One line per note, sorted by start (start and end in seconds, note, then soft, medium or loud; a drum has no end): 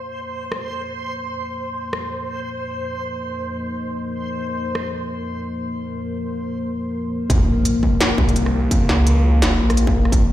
0.00 10.33 F3 medium
0.00 10.33 A#3 medium
0.00 10.33 A#4 medium
0.00 6.59 C5 medium
0.00 2.30 F5 medium
0.52 cross-stick medium
1.93 cross-stick medium
2.18 7.30 D#5 medium
4.75 cross-stick medium
7.30 7.39 A#1 loud
7.30 kick loud
7.30 closed hi-hat medium
7.30 impact medium
7.64 10.33 F5 medium
7.64 closed hi-hat medium
7.83 kick medium
8.01 snare loud
8.01 closed hi-hat medium
8.18 8.90 C2 medium
8.18 kick loud
8.29 closed hi-hat soft
8.36 closed hi-hat medium
8.46 cross-stick soft
8.71 kick loud
8.71 closed hi-hat medium
8.89 9.43 C#2 medium
8.89 snare medium
9.07 closed hi-hat medium
9.42 9.61 F1 medium
9.42 snare loud
9.42 closed hi-hat medium
9.60 10.11 A#1 medium
9.70 cross-stick medium
9.70 closed hi-hat soft
9.77 closed hi-hat medium
9.87 kick loud
10.05 cross-stick soft
10.12 10.22 A#1 loud
10.12 kick loud
10.12 closed hi-hat medium